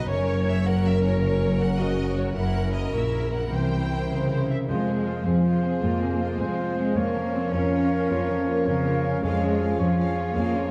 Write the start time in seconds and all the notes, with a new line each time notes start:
Already playing: B2 F#3 D#4 F#4 B4 D#5
0.09 F#1 F#2 C#4 A#4 C#5
0.27 C#4 C#5
0.46 F#4 E5
0.64 C#4 A#4 C#5 F#5
0.84 A#4 E5
1.02 F#4 C#5
1.21 C#3 C#4 A#4 C#5
1.41 C#4
1.60 F#4 F#5
1.79 F#4 C#5 D#5
1.97 A#4
2.17 F#4 C#5
2.34 F#1 F#2 E4 A#4 F#5
2.55 C#4
2.74 E4 D#5
2.93 A#1 A#2 E4 A#4 C#5 E5
3.12 A#4
3.31 E4 F#5
3.51 C2 C3 E3 E4 A#4 C5 G5
3.70 C4
3.91 E4
4.10 C#3 C5
4.28 A#4 C5
4.49 E4 E5
4.68 F2 G#3 C4 F4 G#4 C5 F5
4.87 C3 C4 G#4
5.06 G#3 F4 C5
5.24 F2 F3 C4 G#4 C5 F5
5.43 G#3 F4 C5
5.62 C4 G#4
5.80 F2 A#3 F4 C5
5.84 F2 G#3
5.99 C3 C4 G#4
6.18 G#3 F4 C5
6.38 F2 G#3 C4 G#4 C5 F5
6.57 G#3 F4 C5
6.77 G#3 C4 G#4
6.96 F2 A#3 C#4 F4 A#4 C#5 F5
7.15 F3 C#4 A#4
7.34 A#3 C4 F4 C#5
7.52 F2 C#4 A#4 C#5 F5
7.71 A#3 F4 A#4 C#5
7.90 C#4 F4 A#4
8.09 F2 A#3 F4 C#5
8.28 F3 C#4 A#4
8.47 A#3 F4 C#5
8.66 F2 C#3 C#4 A#4 C#5 F5
8.84 A#3 F4 A#4 C#5
9.03 C#4 F4 A#4
9.23 F2 G#3 F4 G#4 C#5 F5
9.42 F3 C#4 F4 C#5
9.60 F4 G#4 F5
9.79 F2 F3 C#4 F4 G#4 C#5 F5
9.98 F4 G#4 F5
10.16 C#4 F4 C#5
10.36 F2 A#3 F4 G#4 F5
10.55 F3 C#4 F4 C#5